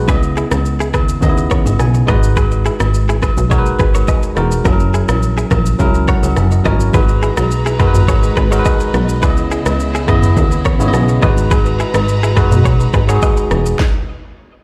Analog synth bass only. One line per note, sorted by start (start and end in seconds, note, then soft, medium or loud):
0.08 0.45 C#2 loud
0.51 0.95 C#2 medium
0.94 1.18 D#2 medium
1.22 1.59 D#2 medium
1.66 1.77 G#1 medium
1.80 2.04 B1 medium
2.08 2.70 G#1 loud
2.80 3.29 G#1 medium
3.37 3.73 B1 medium
3.79 4.04 G#1 medium
4.37 4.61 E1 loud
4.65 5.02 F#1 loud
5.09 5.45 A#1 medium
5.51 5.75 A#1 medium
5.79 6.17 C#2 loud
6.23 6.35 C#2 medium
6.37 6.61 F#1 medium
6.66 6.90 G#1 loud
6.94 7.31 G#1 loud
7.37 7.86 B1 medium
7.94 8.30 G#1 medium
8.37 8.61 G#1 medium
8.94 9.24 B1 loud
9.22 9.59 C#2 loud
9.66 10.10 C#2 loud
10.08 10.32 D#2 medium
10.37 10.74 D#2 medium
10.80 10.92 G#1 medium
10.94 11.18 B1 medium
11.23 11.84 G#1 loud
11.94 12.43 G#1 medium
12.51 12.88 B1 medium
12.94 13.18 G#1 loud
13.51 13.75 E1 loud